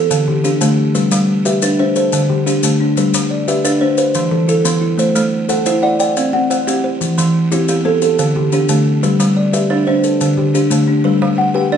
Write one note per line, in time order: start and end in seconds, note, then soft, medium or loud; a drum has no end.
0.00 0.11 G4 medium
0.00 0.27 A4 medium
0.00 0.45 A4 medium
0.00 0.11 C5 medium
0.11 0.44 D3 medium
0.11 maracas medium
0.28 0.61 D3 medium
0.28 0.78 G4 medium
0.44 0.95 D4 medium
0.44 0.95 G4 medium
0.44 maracas medium
0.61 0.95 D3 medium
0.61 0.95 A3 medium
0.61 maracas medium
0.95 1.29 G3 medium
0.95 1.28 B4 medium
0.95 maracas medium
1.12 1.45 G3 medium
1.12 maracas medium
1.45 1.79 G4 medium
1.45 1.96 B4 medium
1.45 1.96 E5 medium
1.45 maracas medium
1.62 1.96 D4 medium
1.62 2.13 B4 medium
1.62 maracas medium
1.79 1.96 D4 medium
1.79 1.95 C5 medium
1.79 2.13 E5 medium
1.96 2.46 A4 medium
1.96 2.30 C5 medium
1.96 maracas medium
2.13 2.47 D3 medium
2.13 maracas medium
2.29 2.63 D3 medium
2.29 2.80 G4 medium
2.46 2.79 D4 medium
2.46 2.97 G4 medium
2.46 maracas medium
2.63 2.97 D3 medium
2.63 2.97 A3 medium
2.63 maracas medium
2.80 3.14 D4 medium
2.97 3.31 G3 medium
2.97 3.31 B4 medium
2.97 maracas medium
3.14 3.48 G3 medium
3.14 maracas medium
3.31 3.81 D5 medium
3.48 3.81 G4 medium
3.48 3.97 B4 medium
3.48 3.98 E5 medium
3.48 maracas medium
3.65 3.98 D4 medium
3.65 4.15 B4 medium
3.65 maracas medium
3.81 3.98 D4 medium
3.81 3.97 C5 medium
3.98 4.48 B4 medium
3.98 4.32 C5 medium
3.98 maracas medium
4.14 4.48 E3 medium
4.14 maracas medium
4.31 4.65 E3 medium
4.31 4.82 A4 medium
4.48 4.80 E4 medium
4.48 4.99 A4 medium
4.48 maracas medium
4.65 4.99 E3 medium
4.65 4.99 B3 medium
4.65 maracas medium
4.81 5.15 E4 medium
4.98 5.32 A3 medium
4.98 5.33 C5 medium
4.98 maracas medium
5.15 5.49 A3 medium
5.15 maracas medium
5.49 5.83 A4 medium
5.49 6.00 C5 medium
5.49 6.00 F#5 medium
5.49 maracas medium
5.66 6.00 E4 medium
5.66 6.17 C5 medium
5.66 maracas medium
5.82 6.00 E4 medium
5.82 5.99 D5 medium
5.82 6.16 F#5 medium
6.00 6.34 D5 medium
6.00 6.50 G5 medium
6.00 maracas medium
6.17 6.51 C4 medium
6.17 maracas medium
6.33 6.67 C4 medium
6.33 6.84 F#5 medium
6.50 6.83 C5 medium
6.50 7.01 F#5 medium
6.50 maracas medium
6.67 7.01 C4 medium
6.67 7.01 G4 medium
6.67 maracas medium
6.84 7.18 C5 medium
7.01 7.35 E3 medium
7.01 maracas medium
7.18 7.51 E3 medium
7.18 maracas medium
7.52 8.02 C4 medium
7.52 7.85 E4 medium
7.52 8.02 G4 medium
7.52 maracas medium
7.68 8.02 B3 medium
7.68 8.19 G4 medium
7.68 maracas medium
7.85 8.02 B3 medium
7.85 8.01 A4 medium
7.85 8.19 C5 medium
8.02 8.52 A4 medium
8.02 8.36 A4 medium
8.02 maracas medium
8.19 8.52 D3 medium
8.19 maracas medium
8.36 8.70 D3 medium
8.36 8.86 G4 medium
8.52 9.03 D4 medium
8.52 9.03 G4 medium
8.52 maracas medium
8.69 9.03 D3 medium
8.69 9.03 A3 medium
8.69 maracas medium
9.03 9.37 G3 medium
9.03 9.37 B4 medium
9.03 maracas medium
9.20 9.53 G3 medium
9.20 maracas medium
9.37 9.87 D5 medium
9.53 9.87 G4 medium
9.53 10.04 B4 medium
9.53 10.04 E5 medium
9.53 maracas medium
9.70 10.04 D4 medium
9.70 10.21 B4 medium
9.87 10.04 D4 medium
9.87 10.37 C5 medium
9.87 10.21 E5 medium
10.04 10.54 A4 medium
10.04 maracas soft
10.21 10.54 D3 medium
10.21 maracas medium
10.37 10.71 D3 medium
10.37 10.88 G4 medium
10.54 10.86 D4 medium
10.54 11.05 G4 medium
10.54 maracas medium
10.70 11.05 D3 medium
10.70 11.04 A3 medium
10.70 maracas medium
10.87 11.21 D4 medium
11.04 11.38 G3 medium
11.04 11.38 B4 medium
11.22 11.55 G3 loud
11.38 11.77 F#5 medium
11.54 11.77 G4 medium
11.54 11.77 B4 medium
11.54 11.77 G5 medium
11.72 11.77 D4 medium
11.72 11.77 D5 medium